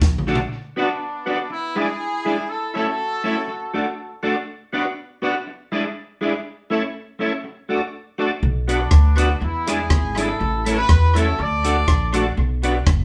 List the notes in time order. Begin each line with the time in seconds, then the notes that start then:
0.02 A#1, kick, snare
0.18 mid tom
0.27 A3 D4 F#4 A4 D5
0.35 floor tom
0.76 B3 D4 F#4 B4 D5
1.26 B3 D4 F#4 B4 D5
1.50 B3 E4, muted clean electric guitar stroke
1.75 G#3 D4 E4 G#4 D5
2.25 G#3 D4 E4 G#4 D5
2.48 E4 A4
2.74 A3 C#4 E4 F#4 A4 C#5
3.24 A3 C#4 E4 A4 C#5
3.48 muted clean electric guitar stroke
3.73 A3 D4 F#4 A4 D5
4.23 A3 D4 F#4 A4 D5
4.72 B3 D4 F#4 B4 D5
5.22 B3 D4 F#4 B4 D5
5.47 muted clean electric guitar stroke
5.72 G#3 D4 E4 G#4 D5
6.21 G#3 D4 E4 G#4 D5
6.70 A3 C#4 E4 A4 C#5
7.19 A3 C#4 E4 A4 C#5
7.44 muted clean electric guitar stroke
7.69 A3 D4 F#4 A4 D5
8.18 A3 D4 F#4 A4 D5
8.43 B1
8.68 B3 D4 F#4 B4 D5, closed hi-hat
8.91 D2, kick, cross-stick
9.17 B3 D4 F#4 B4 D5, closed hi-hat
9.41 E2 B3 E4, muted clean electric guitar stroke
9.67 G#3 D4 E4 G#4 D5, cross-stick, closed hi-hat
9.90 G#1, kick, cross-stick
10.16 G#3 D4 E4 G#4 A4 D5, closed hi-hat
10.41 A1
10.65 A3 C#4 E4 G4 A4 B4 C#5, closed hi-hat
10.89 E2, kick, cross-stick
11.15 A3 C#4 E4 F#4 A4 C#5, closed hi-hat
11.39 D2 A4 D5, muted clean electric guitar stroke
11.64 A3 D4 F#4 A4 D5, closed hi-hat
11.88 A#1, kick, cross-stick
12.13 A3 D4 F#4 A4 D5, closed hi-hat
12.37 B1
12.63 B3 D4 F#4 B4 D5, closed hi-hat
12.87 F#1, kick, cross-stick